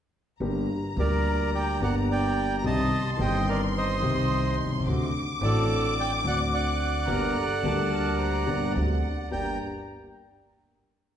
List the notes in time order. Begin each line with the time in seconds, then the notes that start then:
0.40 G1 G2 D3 G3 A#3 G4 A#5
0.96 D2 D3 G3 A#3 G4 A#4 D5
1.55 D5 G5
1.79 G1 G2 D3 G3 A#3 G4 D5
1.83 F#5
2.11 D5 G5
2.58 A#5
2.63 C2 C3 D#3 G3 C4 G4 D#5 A5 C6
3.15 D#3 G3 A5
3.19 G1 G2 C4 G4 D#5 G5
3.49 A#4 D5
3.78 C5 D#5
4.00 C2 C3 D#3 G3 C4 G4
4.64 B1
4.72 C2
4.79 C#2
4.85 D2 D3 A3 C4 F#4 D6
5.39 A1 A2 D3 A3 C4
5.43 F#4 A4 D5
5.99 D5 G5
6.22 D2 D3 A3 C4
6.26 F#4 D5 F#5
6.54 D5 F#5
7.07 G1 G2 D3 G3 A#3 G4 A#4 A#5
7.35 A4
7.62 D2 D3 G3 A#3 G4 A5
7.91 A#4
8.18 C5 A#5
8.46 G1 G2 D3 G3 A#3 G4 D5
8.75 D2 D3 A3 C4 F#4 F#5
9.31 G1 G2 A#3 D4 G4 D5 G5 A#5